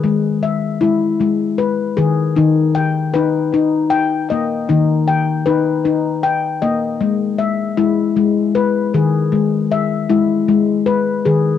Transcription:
<<
  \new Staff \with { instrumentName = "Handpan" } { \time 6/8 \tempo 4. = 52 << { gis'8 e''4. r8 gis'8~ | gis'8 g''4. r8 dis''8~ | dis''8 g''4. r8 dis''8~ | dis''8 e''4. r8 gis'8~ |
gis'8 e''4. r8 gis'8 | } \\ { gis4 e'4 b'4 | dis'4 b'4 g''4 | dis'4 b'4 g''4 | gis4 e'4 b'4 |
gis4 e'4 b'4 | } >> }
  \new Staff \with { instrumentName = "Handpan" } { \clef bass \time 6/8 r4 gis8 gis4 dis8 | dis4 dis'8 dis'4 ais8 | dis4 dis'8 dis'4 ais8 | r4 gis8 gis4 dis8 |
r4 gis8 gis4 dis8 | }
>>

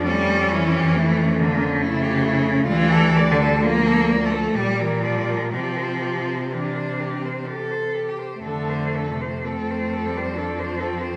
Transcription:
<<
  \new Staff \with { instrumentName = "Cello" } { \time 3/4 \key f \major \tempo 4 = 64 a16 cis'16 e'16 g'16 e'16 cis'16 a16 cis'16 e'16 g'16 e'16 cis'16 | f'16 a'16 d''16 a'16 f'16 a'16 d''16 a'16 g'16 bes'16 d''16 bes'16 | g'16 c''16 g'16 c''16 g'16 c''16 g'16 c''16 g'16 c''16 g'16 c''16 | a'16 c''16 a'16 c''16 a'16 c''16 a'16 c''16 a'16 c''16 a'16 c''16 | }
  \new Staff \with { instrumentName = "Cello" } { \time 3/4 \key f \major cis'4 a8 bes8 a4 | g4 f4 g4 | c'4 \tuplet 3/2 { d'4 c'8 a'4 g'8 } | a4 c'4 d'8 c'8 | }
  \new Staff \with { instrumentName = "Cello" } { \clef bass \time 3/4 \key f \major g8 e4 d8 cis4 | \tuplet 3/2 { e4 d8 bes4 a8 } g16 e16 f8 | f4 e4. r8 | \tuplet 3/2 { d4 c8 a4 g8 } f4 | }
  \new Staff \with { instrumentName = "Cello" } { \clef bass \time 3/4 \key f \major f,2. | d,2 bes,4 | c2. | f,2. | }
>>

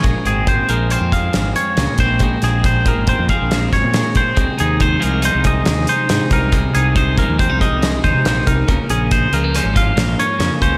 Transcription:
<<
  \new Staff \with { instrumentName = "Clean electric guitar" } { \time 5/4 \key bes \minor \tempo 4 = 139 r8 aes'8 c''8 bes'8 c''8 f''4 des''4 c''8 | r8 aes'8 c''8 bes'8 c''8 f''4 des''4 c''8 | r8 aes'8 c''8 bes'8 c''8 ees''4 c''4 bes'8 | r8 aes'8 c''8 bes'8 c''8 ees''4 c''4 bes'8 |
r8 aes'8 c''8 bes'8 c''8 f''4 des''4 c''8 | }
  \new Staff \with { instrumentName = "Clean electric guitar" } { \clef bass \time 5/4 \key bes \minor << { aes8 c'4 aes8 c'8 aes'8 aes4 aes8 c'8 | aes8 c'4 aes8 c'8 aes'8 aes4 aes8 c'8 | aes8 ees'4 aes8 ees'8 aes'8 aes8 ees'8 aes8 ees'8 | aes8 ees'4 aes8 c'16 ees'16 aes'8 aes8 ees'8 aes8 ees'8 |
bes8 des'4 aes16 bes16 des'8 f'8 bes8 des'8 bes8 des'8 | } \\ { bes,4. f4 f,4. bes,4 | bes,4. f4 f,4. bes,4 | c4. f4 c4. c4 | c4. f4 c4. c4 |
des4. f4 aes,4. des4 | } >> }
  \new Staff \with { instrumentName = "Fingered electric bass" } { \clef bass \time 5/4 \key bes \minor bes,,16 r16 aes,,4 bes,,8. f,8. aes,,8 r8 des,16 r16 bes,,8~ | bes,,8 bes,,4~ bes,,16 aes,,8 f,16 r16 bes,,8. aes,,16 bes,8 r8. | c,16 r16 ees,4 c,8. c,8. ees,8 r8 aes,16 r16 c,8~ | c,8 c,4~ c,16 ees,8 c,16 r16 c,8. ees,16 c16 bes,,8 c,8 |
des,16 r16 bes,,4 des,8. aes,,8. bes,,8 r8 f,16 r16 des,8 | }
  \new DrumStaff \with { instrumentName = "Drums" } \drummode { \time 5/4 <hh bd>8 hh8 <hh bd>8 hh8 hh8 <hh bd>8 <hh sn>8 hh8 <hh sn>8 <hh bd>8 | <hh bd>8 <hh sn>8 <hh bd>8 <hh bd>8 <hh bd>8 <hh bd>8 <hh sn>8 <hh bd sn>8 <hh sn>8 <hh bd>8 | <hh bd>8 hh8 <hh bd>8 hh8 hh8 <hh bd>8 <hh sn>8 hh8 <hh sn>8 <hh bd>8 | <hh bd>8 hh8 <hh bd>8 <hh bd>8 <hh bd>8 <hh bd>8 <hh sn>8 <hh bd>8 <hh sn>8 <hh bd>8 |
<hh bd>8 hh8 <hh bd>8 hh8 <hh sn>8 <hh bd>8 <hh sn>8 hh8 <hh sn>8 <hh bd>8 | }
>>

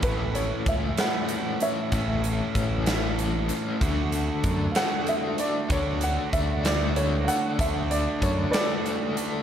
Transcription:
<<
  \new Staff \with { instrumentName = "Upright piano" } { \time 6/8 \key d \lydian \tempo 4. = 64 b'8 cis''8 e''8 fis''4 <cis'' e''>8~ | <cis'' e''>4. r4. | r4. <f'' fis''>8 e''8 d''8 | cis''8 fis''8 e''8 d''8 cis''8 <f'' fis''>8 |
e''8 d''8 cis''8 <b' d''>8 r4 | }
  \new Staff \with { instrumentName = "Overdriven electric guitar" } { \time 6/8 \key d \lydian <a, e a cis'>4 cis'8 a8 e8 cis'8 | a,4 cis'8 a8 e8 cis'8 | d4 d'8 a8 d8 d'8 | d4 d'8 a8 d8 d'8 |
d4 d'8 a8 d8 d'8 | }
  \new Staff \with { instrumentName = "Overdriven electric guitar" } { \time 6/8 \key d \lydian <a, e a cis' e'>4. <a, e a cis' e'>4. | <a, e a cis' e'>4. <a, e a cis' e'>4. | <d a d' fis'>4. <d a d' fis'>4. | <d a d' fis'>4. <d a d' fis'>4. |
<d a d' fis'>4. <d a d' fis'>4. | }
  \new Staff \with { instrumentName = "Picked electric bass" } { \clef bass \time 6/8 \key d \lydian a,,4 cis,8 r4. | a,,4 a,,2 | d,4 fis,8 r4. | d,4 d,2 |
d,4 fis,8 r4. | }
  \new DrumStaff \with { instrumentName = "Drums" } \drummode { \time 6/8 <hh bd>8 hh8 <hh bd>8 <hh sn>8 hh8 hh8 | <hh bd>8 hh8 <hh bd>8 <hh sn>8 hh8 hh8 | <hh bd>8 hh8 <hh bd>8 <hh sn>8 hh8 hh8 | <hh bd>8 hh8 <hh bd>8 <hh sn>8 hh8 hh8 |
<hh bd>8 hh8 <hh bd>8 <hh sn>8 hh8 hh8 | }
>>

